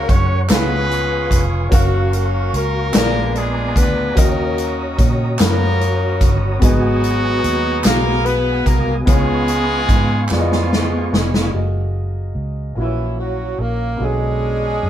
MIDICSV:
0, 0, Header, 1, 7, 480
1, 0, Start_track
1, 0, Key_signature, 6, "major"
1, 0, Tempo, 818554
1, 1010, Time_signature, 6, 3, 24, 8
1, 8736, End_track
2, 0, Start_track
2, 0, Title_t, "Tonewheel organ"
2, 0, Program_c, 0, 16
2, 0, Note_on_c, 0, 70, 69
2, 0, Note_on_c, 0, 73, 63
2, 0, Note_on_c, 0, 78, 62
2, 0, Note_on_c, 0, 85, 78
2, 287, Note_off_c, 0, 78, 0
2, 288, Note_off_c, 0, 70, 0
2, 288, Note_off_c, 0, 73, 0
2, 297, Note_on_c, 0, 71, 61
2, 307, Note_on_c, 0, 80, 60
2, 308, Note_on_c, 0, 77, 64
2, 999, Note_off_c, 0, 85, 0
2, 1005, Note_off_c, 0, 71, 0
2, 1010, Note_off_c, 0, 80, 0
2, 1012, Note_on_c, 0, 85, 70
2, 1017, Note_on_c, 0, 70, 64
2, 1020, Note_on_c, 0, 66, 60
2, 1721, Note_off_c, 0, 77, 0
2, 1722, Note_off_c, 0, 85, 0
2, 1724, Note_off_c, 0, 70, 0
2, 1726, Note_off_c, 0, 66, 0
2, 1735, Note_on_c, 0, 80, 64
2, 1738, Note_on_c, 0, 82, 62
2, 1739, Note_on_c, 0, 59, 66
2, 1740, Note_on_c, 0, 86, 68
2, 2443, Note_off_c, 0, 80, 0
2, 2444, Note_off_c, 0, 59, 0
2, 2445, Note_off_c, 0, 86, 0
2, 2449, Note_on_c, 0, 73, 66
2, 2450, Note_on_c, 0, 66, 66
2, 2450, Note_on_c, 0, 87, 73
2, 3867, Note_off_c, 0, 82, 0
2, 3871, Note_off_c, 0, 73, 0
2, 3879, Note_on_c, 0, 59, 68
2, 3882, Note_on_c, 0, 80, 67
2, 5302, Note_off_c, 0, 66, 0
2, 5302, Note_off_c, 0, 87, 0
2, 5321, Note_on_c, 0, 85, 77
2, 5324, Note_on_c, 0, 77, 66
2, 6740, Note_off_c, 0, 59, 0
2, 6742, Note_off_c, 0, 80, 0
2, 6751, Note_off_c, 0, 85, 0
2, 6752, Note_off_c, 0, 77, 0
2, 8736, End_track
3, 0, Start_track
3, 0, Title_t, "Upright piano"
3, 0, Program_c, 1, 0
3, 0, Control_c, 1, 64, 127
3, 0, Note_on_c, 1, 49, 58
3, 0, Note_on_c, 1, 61, 67
3, 0, Note_on_c, 1, 66, 64
3, 0, Note_on_c, 1, 70, 66
3, 0, Note_on_c, 1, 78, 78
3, 268, Note_off_c, 1, 49, 0
3, 281, Note_off_c, 1, 61, 0
3, 281, Note_on_c, 1, 61, 64
3, 285, Note_on_c, 1, 68, 59
3, 289, Note_on_c, 1, 49, 56
3, 294, Note_on_c, 1, 71, 64
3, 300, Control_c, 1, 64, 0
3, 300, Note_on_c, 1, 77, 72
3, 301, Note_off_c, 1, 78, 0
3, 304, Note_off_c, 1, 70, 0
3, 306, Note_off_c, 1, 66, 0
3, 415, Control_c, 1, 64, 127
3, 745, Note_off_c, 1, 61, 0
3, 747, Note_off_c, 1, 68, 0
3, 752, Note_off_c, 1, 71, 0
3, 755, Note_off_c, 1, 77, 0
3, 985, Note_off_c, 1, 49, 0
3, 992, Note_on_c, 1, 61, 75
3, 997, Note_on_c, 1, 66, 68
3, 1002, Note_on_c, 1, 70, 64
3, 1012, Note_on_c, 1, 77, 77
3, 1017, Control_c, 1, 64, 0
3, 1113, Control_c, 1, 64, 127
3, 1460, Note_off_c, 1, 61, 0
3, 1462, Note_off_c, 1, 66, 0
3, 1465, Note_off_c, 1, 70, 0
3, 1470, Note_off_c, 1, 77, 0
3, 1714, Note_on_c, 1, 59, 66
3, 1722, Note_on_c, 1, 68, 61
3, 1724, Note_on_c, 1, 46, 63
3, 1729, Note_on_c, 1, 70, 59
3, 1735, Note_on_c, 1, 74, 72
3, 1736, Control_c, 1, 64, 0
3, 1823, Control_c, 1, 64, 127
3, 2180, Note_off_c, 1, 59, 0
3, 2184, Note_off_c, 1, 68, 0
3, 2187, Note_off_c, 1, 70, 0
3, 2190, Note_off_c, 1, 74, 0
3, 2421, Note_off_c, 1, 46, 0
3, 2428, Note_on_c, 1, 61, 76
3, 2435, Note_on_c, 1, 51, 57
3, 2435, Note_on_c, 1, 66, 62
3, 2440, Note_on_c, 1, 70, 64
3, 2448, Note_on_c, 1, 75, 80
3, 2453, Control_c, 1, 64, 0
3, 2548, Control_c, 1, 64, 127
3, 2896, Note_off_c, 1, 61, 0
3, 2900, Note_off_c, 1, 66, 0
3, 2902, Note_off_c, 1, 70, 0
3, 2906, Note_off_c, 1, 75, 0
3, 3136, Note_off_c, 1, 51, 0
3, 3152, Note_on_c, 1, 61, 69
3, 3162, Note_on_c, 1, 66, 61
3, 3166, Note_on_c, 1, 70, 63
3, 3174, Note_on_c, 1, 71, 61
3, 3207, Note_off_c, 1, 71, 0
3, 3211, Note_on_c, 1, 73, 73
3, 3618, Note_off_c, 1, 61, 0
3, 3623, Note_off_c, 1, 66, 0
3, 3624, Note_off_c, 1, 70, 0
3, 3647, Note_off_c, 1, 73, 0
3, 3867, Note_on_c, 1, 59, 72
3, 3877, Note_on_c, 1, 66, 65
3, 3879, Note_on_c, 1, 44, 58
3, 3881, Note_on_c, 1, 68, 69
3, 3888, Note_on_c, 1, 75, 79
3, 3890, Control_c, 1, 64, 0
3, 4004, Control_c, 1, 64, 127
3, 4335, Note_off_c, 1, 59, 0
3, 4340, Note_off_c, 1, 66, 0
3, 4342, Note_off_c, 1, 68, 0
3, 4346, Note_off_c, 1, 75, 0
3, 4577, Note_off_c, 1, 44, 0
3, 4596, Note_on_c, 1, 58, 54
3, 4602, Note_on_c, 1, 66, 61
3, 4609, Note_on_c, 1, 68, 59
3, 4614, Note_on_c, 1, 77, 76
3, 4631, Note_on_c, 1, 59, 63
3, 4638, Note_off_c, 1, 58, 0
3, 5062, Note_off_c, 1, 66, 0
3, 5066, Note_off_c, 1, 68, 0
3, 5068, Note_off_c, 1, 77, 0
3, 5077, Note_off_c, 1, 59, 0
3, 5311, Note_on_c, 1, 59, 67
3, 5312, Note_on_c, 1, 65, 65
3, 5319, Note_on_c, 1, 49, 58
3, 5325, Note_on_c, 1, 68, 62
3, 5329, Note_on_c, 1, 73, 82
3, 5331, Control_c, 1, 64, 0
3, 5422, Control_c, 1, 64, 127
3, 5778, Note_off_c, 1, 59, 0
3, 5778, Note_off_c, 1, 65, 0
3, 5785, Note_off_c, 1, 68, 0
3, 5787, Note_off_c, 1, 73, 0
3, 6019, Note_off_c, 1, 49, 0
3, 6038, Note_on_c, 1, 59, 65
3, 6043, Note_on_c, 1, 65, 61
3, 6050, Note_on_c, 1, 68, 55
3, 6058, Note_on_c, 1, 74, 56
3, 6089, Note_off_c, 1, 74, 0
3, 6097, Note_on_c, 1, 75, 70
3, 6502, Note_off_c, 1, 59, 0
3, 6505, Note_off_c, 1, 65, 0
3, 6508, Note_off_c, 1, 68, 0
3, 6532, Note_off_c, 1, 75, 0
3, 6759, Note_on_c, 1, 58, 47
3, 6766, Note_on_c, 1, 66, 40
3, 6772, Note_on_c, 1, 68, 42
3, 6773, Control_c, 1, 64, 0
3, 6781, Note_on_c, 1, 75, 53
3, 6887, Control_c, 1, 64, 127
3, 7470, Note_off_c, 1, 58, 0
3, 7479, Note_on_c, 1, 58, 45
3, 7482, Note_off_c, 1, 66, 0
3, 7487, Note_on_c, 1, 64, 38
3, 7488, Note_on_c, 1, 46, 40
3, 7491, Note_on_c, 1, 66, 37
3, 7492, Note_off_c, 1, 68, 0
3, 7495, Control_c, 1, 64, 0
3, 7496, Note_off_c, 1, 75, 0
3, 7500, Note_on_c, 1, 71, 36
3, 7533, Note_off_c, 1, 71, 0
3, 7537, Note_on_c, 1, 73, 50
3, 7613, Control_c, 1, 64, 127
3, 8188, Note_off_c, 1, 46, 0
3, 8189, Note_on_c, 1, 59, 39
3, 8203, Note_on_c, 1, 50, 40
3, 8206, Note_on_c, 1, 47, 39
3, 8207, Note_off_c, 1, 58, 0
3, 8207, Note_off_c, 1, 66, 0
3, 8211, Note_off_c, 1, 64, 0
3, 8216, Note_on_c, 1, 66, 36
3, 8219, Control_c, 1, 64, 0
3, 8222, Note_off_c, 1, 73, 0
3, 8231, Note_on_c, 1, 73, 44
3, 8307, Control_c, 1, 64, 127
3, 8736, Note_off_c, 1, 47, 0
3, 8736, Note_off_c, 1, 50, 0
3, 8736, Note_off_c, 1, 59, 0
3, 8736, Note_off_c, 1, 66, 0
3, 8736, Note_off_c, 1, 73, 0
3, 8736, End_track
4, 0, Start_track
4, 0, Title_t, "Horn section"
4, 0, Program_c, 2, 61
4, 0, Note_on_c, 2, 58, 80
4, 0, Note_on_c, 2, 61, 73
4, 0, Note_on_c, 2, 70, 87
4, 59, Note_off_c, 2, 61, 0
4, 59, Note_on_c, 2, 61, 86
4, 59, Note_on_c, 2, 73, 94
4, 60, Note_off_c, 2, 58, 0
4, 60, Note_off_c, 2, 70, 0
4, 239, Note_off_c, 2, 61, 0
4, 239, Note_off_c, 2, 73, 0
4, 310, Note_on_c, 2, 65, 77
4, 311, Note_on_c, 2, 59, 90
4, 311, Note_on_c, 2, 71, 98
4, 312, Note_on_c, 2, 68, 74
4, 840, Note_off_c, 2, 59, 0
4, 840, Note_off_c, 2, 71, 0
4, 996, Note_off_c, 2, 65, 0
4, 997, Note_off_c, 2, 68, 0
4, 1020, Note_on_c, 2, 54, 81
4, 1020, Note_on_c, 2, 66, 88
4, 1025, Note_on_c, 2, 58, 68
4, 1026, Note_on_c, 2, 61, 67
4, 1238, Note_off_c, 2, 54, 0
4, 1238, Note_off_c, 2, 66, 0
4, 1264, Note_on_c, 2, 54, 72
4, 1264, Note_on_c, 2, 66, 78
4, 1480, Note_off_c, 2, 54, 0
4, 1480, Note_off_c, 2, 66, 0
4, 1503, Note_off_c, 2, 58, 0
4, 1503, Note_on_c, 2, 58, 81
4, 1503, Note_on_c, 2, 70, 88
4, 1713, Note_off_c, 2, 61, 0
4, 1734, Note_off_c, 2, 58, 0
4, 1734, Note_off_c, 2, 70, 0
4, 1741, Note_on_c, 2, 58, 89
4, 1741, Note_on_c, 2, 70, 97
4, 1745, Note_on_c, 2, 62, 73
4, 1749, Note_on_c, 2, 65, 75
4, 1958, Note_off_c, 2, 58, 0
4, 1958, Note_off_c, 2, 70, 0
4, 1972, Note_on_c, 2, 56, 76
4, 1972, Note_on_c, 2, 68, 82
4, 2209, Note_off_c, 2, 56, 0
4, 2209, Note_off_c, 2, 68, 0
4, 2216, Note_on_c, 2, 59, 77
4, 2216, Note_on_c, 2, 71, 84
4, 2431, Note_off_c, 2, 62, 0
4, 2433, Note_off_c, 2, 65, 0
4, 2451, Note_off_c, 2, 59, 0
4, 2451, Note_off_c, 2, 71, 0
4, 2452, Note_on_c, 2, 58, 79
4, 2452, Note_on_c, 2, 70, 86
4, 2458, Note_on_c, 2, 61, 61
4, 2459, Note_on_c, 2, 66, 60
4, 2928, Note_off_c, 2, 58, 0
4, 2928, Note_off_c, 2, 70, 0
4, 3147, Note_off_c, 2, 61, 0
4, 3147, Note_off_c, 2, 66, 0
4, 3177, Note_on_c, 2, 58, 93
4, 3177, Note_on_c, 2, 70, 101
4, 3179, Note_on_c, 2, 66, 68
4, 3180, Note_on_c, 2, 61, 72
4, 3687, Note_off_c, 2, 58, 0
4, 3687, Note_off_c, 2, 70, 0
4, 3867, Note_off_c, 2, 66, 0
4, 3868, Note_off_c, 2, 61, 0
4, 3885, Note_on_c, 2, 54, 93
4, 3885, Note_on_c, 2, 66, 101
4, 3892, Note_on_c, 2, 63, 77
4, 3893, Note_on_c, 2, 59, 80
4, 4580, Note_off_c, 2, 54, 0
4, 4580, Note_off_c, 2, 66, 0
4, 4584, Note_off_c, 2, 59, 0
4, 4584, Note_off_c, 2, 63, 0
4, 4611, Note_on_c, 2, 58, 101
4, 4611, Note_on_c, 2, 70, 110
4, 4839, Note_on_c, 2, 59, 86
4, 4839, Note_on_c, 2, 71, 93
4, 4847, Note_off_c, 2, 58, 0
4, 4847, Note_off_c, 2, 70, 0
4, 5079, Note_on_c, 2, 58, 87
4, 5079, Note_on_c, 2, 70, 94
4, 5081, Note_off_c, 2, 59, 0
4, 5081, Note_off_c, 2, 71, 0
4, 5248, Note_off_c, 2, 58, 0
4, 5248, Note_off_c, 2, 70, 0
4, 5321, Note_on_c, 2, 56, 95
4, 5321, Note_on_c, 2, 68, 104
4, 5334, Note_on_c, 2, 59, 77
4, 5334, Note_on_c, 2, 65, 74
4, 6019, Note_off_c, 2, 56, 0
4, 6019, Note_off_c, 2, 68, 0
4, 6026, Note_off_c, 2, 59, 0
4, 6026, Note_off_c, 2, 65, 0
4, 6056, Note_on_c, 2, 53, 73
4, 6056, Note_on_c, 2, 65, 79
4, 6061, Note_on_c, 2, 59, 57
4, 6067, Note_on_c, 2, 56, 58
4, 6591, Note_off_c, 2, 53, 0
4, 6591, Note_off_c, 2, 65, 0
4, 6751, Note_off_c, 2, 59, 0
4, 6754, Note_off_c, 2, 56, 0
4, 7498, Note_on_c, 2, 52, 57
4, 7498, Note_on_c, 2, 64, 62
4, 7503, Note_on_c, 2, 61, 46
4, 7718, Note_off_c, 2, 52, 0
4, 7718, Note_off_c, 2, 64, 0
4, 7740, Note_on_c, 2, 54, 56
4, 7740, Note_on_c, 2, 66, 61
4, 7976, Note_off_c, 2, 54, 0
4, 7976, Note_off_c, 2, 66, 0
4, 7977, Note_on_c, 2, 58, 56
4, 7977, Note_on_c, 2, 70, 61
4, 8196, Note_off_c, 2, 61, 0
4, 8215, Note_off_c, 2, 58, 0
4, 8215, Note_off_c, 2, 70, 0
4, 8222, Note_on_c, 2, 56, 69
4, 8222, Note_on_c, 2, 68, 75
4, 8228, Note_on_c, 2, 62, 53
4, 8233, Note_on_c, 2, 61, 51
4, 8736, Note_off_c, 2, 56, 0
4, 8736, Note_off_c, 2, 61, 0
4, 8736, Note_off_c, 2, 62, 0
4, 8736, Note_off_c, 2, 68, 0
4, 8736, End_track
5, 0, Start_track
5, 0, Title_t, "Tenor saxophone"
5, 0, Program_c, 3, 66
5, 7505, Note_on_c, 3, 52, 57
5, 7742, Note_on_c, 3, 54, 58
5, 7751, Note_off_c, 3, 52, 0
5, 7986, Note_on_c, 3, 58, 62
5, 7995, Note_off_c, 3, 54, 0
5, 8238, Note_on_c, 3, 56, 74
5, 8246, Note_off_c, 3, 58, 0
5, 8736, Note_off_c, 3, 56, 0
5, 8736, End_track
6, 0, Start_track
6, 0, Title_t, "Fingered electric bass"
6, 0, Program_c, 4, 33
6, 53, Note_on_c, 4, 42, 81
6, 273, Note_off_c, 4, 42, 0
6, 294, Note_on_c, 4, 37, 94
6, 748, Note_off_c, 4, 37, 0
6, 768, Note_on_c, 4, 29, 85
6, 989, Note_off_c, 4, 29, 0
6, 1006, Note_on_c, 4, 30, 92
6, 1463, Note_off_c, 4, 30, 0
6, 1487, Note_on_c, 4, 37, 81
6, 1708, Note_off_c, 4, 37, 0
6, 1731, Note_on_c, 4, 34, 96
6, 2185, Note_off_c, 4, 34, 0
6, 2204, Note_on_c, 4, 38, 77
6, 2426, Note_off_c, 4, 38, 0
6, 2443, Note_on_c, 4, 39, 88
6, 2900, Note_off_c, 4, 39, 0
6, 2925, Note_on_c, 4, 46, 96
6, 3146, Note_off_c, 4, 46, 0
6, 3168, Note_on_c, 4, 42, 89
6, 3643, Note_on_c, 4, 31, 87
6, 3651, Note_off_c, 4, 42, 0
6, 3864, Note_off_c, 4, 31, 0
6, 3884, Note_on_c, 4, 32, 89
6, 4340, Note_off_c, 4, 32, 0
6, 4364, Note_on_c, 4, 39, 84
6, 4584, Note_off_c, 4, 39, 0
6, 4602, Note_on_c, 4, 35, 93
6, 5059, Note_off_c, 4, 35, 0
6, 5078, Note_on_c, 4, 36, 81
6, 5301, Note_off_c, 4, 36, 0
6, 5318, Note_on_c, 4, 37, 83
6, 5778, Note_off_c, 4, 37, 0
6, 5801, Note_on_c, 4, 44, 80
6, 6023, Note_off_c, 4, 44, 0
6, 6045, Note_on_c, 4, 41, 83
6, 6502, Note_off_c, 4, 41, 0
6, 6526, Note_on_c, 4, 29, 84
6, 6747, Note_off_c, 4, 29, 0
6, 6766, Note_on_c, 4, 30, 55
6, 7224, Note_off_c, 4, 30, 0
6, 7242, Note_on_c, 4, 37, 61
6, 7466, Note_off_c, 4, 37, 0
6, 7486, Note_on_c, 4, 34, 65
6, 7946, Note_off_c, 4, 34, 0
6, 7967, Note_on_c, 4, 34, 55
6, 8190, Note_off_c, 4, 34, 0
6, 8211, Note_on_c, 4, 35, 61
6, 8670, Note_off_c, 4, 35, 0
6, 8697, Note_on_c, 4, 42, 57
6, 8736, Note_off_c, 4, 42, 0
6, 8736, End_track
7, 0, Start_track
7, 0, Title_t, "Drums"
7, 52, Note_on_c, 9, 36, 91
7, 53, Note_on_c, 9, 42, 54
7, 111, Note_off_c, 9, 36, 0
7, 112, Note_off_c, 9, 42, 0
7, 288, Note_on_c, 9, 42, 81
7, 290, Note_on_c, 9, 39, 88
7, 294, Note_on_c, 9, 38, 101
7, 346, Note_off_c, 9, 42, 0
7, 348, Note_off_c, 9, 39, 0
7, 353, Note_off_c, 9, 38, 0
7, 536, Note_on_c, 9, 42, 43
7, 594, Note_off_c, 9, 42, 0
7, 768, Note_on_c, 9, 36, 77
7, 771, Note_on_c, 9, 42, 66
7, 826, Note_off_c, 9, 36, 0
7, 829, Note_off_c, 9, 42, 0
7, 1008, Note_on_c, 9, 36, 108
7, 1008, Note_on_c, 9, 42, 83
7, 1066, Note_off_c, 9, 36, 0
7, 1067, Note_off_c, 9, 42, 0
7, 1249, Note_on_c, 9, 42, 49
7, 1308, Note_off_c, 9, 42, 0
7, 1489, Note_on_c, 9, 42, 57
7, 1548, Note_off_c, 9, 42, 0
7, 1720, Note_on_c, 9, 42, 79
7, 1723, Note_on_c, 9, 39, 93
7, 1727, Note_on_c, 9, 38, 102
7, 1779, Note_off_c, 9, 42, 0
7, 1782, Note_off_c, 9, 39, 0
7, 1785, Note_off_c, 9, 38, 0
7, 1966, Note_on_c, 9, 42, 42
7, 2025, Note_off_c, 9, 42, 0
7, 2204, Note_on_c, 9, 36, 84
7, 2208, Note_on_c, 9, 42, 62
7, 2262, Note_off_c, 9, 36, 0
7, 2266, Note_off_c, 9, 42, 0
7, 2444, Note_on_c, 9, 36, 118
7, 2444, Note_on_c, 9, 42, 84
7, 2503, Note_off_c, 9, 36, 0
7, 2503, Note_off_c, 9, 42, 0
7, 2686, Note_on_c, 9, 42, 51
7, 2744, Note_off_c, 9, 42, 0
7, 2924, Note_on_c, 9, 36, 88
7, 2924, Note_on_c, 9, 42, 55
7, 2982, Note_off_c, 9, 36, 0
7, 2983, Note_off_c, 9, 42, 0
7, 3159, Note_on_c, 9, 39, 96
7, 3161, Note_on_c, 9, 42, 82
7, 3168, Note_on_c, 9, 38, 103
7, 3218, Note_off_c, 9, 39, 0
7, 3220, Note_off_c, 9, 42, 0
7, 3226, Note_off_c, 9, 38, 0
7, 3408, Note_on_c, 9, 42, 45
7, 3467, Note_off_c, 9, 42, 0
7, 3640, Note_on_c, 9, 42, 64
7, 3641, Note_on_c, 9, 36, 90
7, 3699, Note_off_c, 9, 42, 0
7, 3700, Note_off_c, 9, 36, 0
7, 3881, Note_on_c, 9, 42, 81
7, 3882, Note_on_c, 9, 36, 110
7, 3939, Note_off_c, 9, 42, 0
7, 3940, Note_off_c, 9, 36, 0
7, 4126, Note_on_c, 9, 42, 55
7, 4184, Note_off_c, 9, 42, 0
7, 4363, Note_on_c, 9, 42, 53
7, 4422, Note_off_c, 9, 42, 0
7, 4598, Note_on_c, 9, 39, 94
7, 4598, Note_on_c, 9, 42, 90
7, 4604, Note_on_c, 9, 38, 100
7, 4656, Note_off_c, 9, 39, 0
7, 4656, Note_off_c, 9, 42, 0
7, 4663, Note_off_c, 9, 38, 0
7, 4841, Note_on_c, 9, 42, 44
7, 4900, Note_off_c, 9, 42, 0
7, 5079, Note_on_c, 9, 36, 84
7, 5080, Note_on_c, 9, 42, 60
7, 5137, Note_off_c, 9, 36, 0
7, 5139, Note_off_c, 9, 42, 0
7, 5320, Note_on_c, 9, 36, 117
7, 5321, Note_on_c, 9, 42, 80
7, 5378, Note_off_c, 9, 36, 0
7, 5380, Note_off_c, 9, 42, 0
7, 5558, Note_on_c, 9, 42, 53
7, 5617, Note_off_c, 9, 42, 0
7, 5798, Note_on_c, 9, 36, 93
7, 5799, Note_on_c, 9, 42, 53
7, 5857, Note_off_c, 9, 36, 0
7, 5857, Note_off_c, 9, 42, 0
7, 6032, Note_on_c, 9, 39, 84
7, 6048, Note_on_c, 9, 38, 51
7, 6091, Note_off_c, 9, 39, 0
7, 6107, Note_off_c, 9, 38, 0
7, 6169, Note_on_c, 9, 38, 53
7, 6228, Note_off_c, 9, 38, 0
7, 6290, Note_on_c, 9, 38, 74
7, 6349, Note_off_c, 9, 38, 0
7, 6532, Note_on_c, 9, 38, 84
7, 6590, Note_off_c, 9, 38, 0
7, 6651, Note_on_c, 9, 38, 90
7, 6709, Note_off_c, 9, 38, 0
7, 8736, End_track
0, 0, End_of_file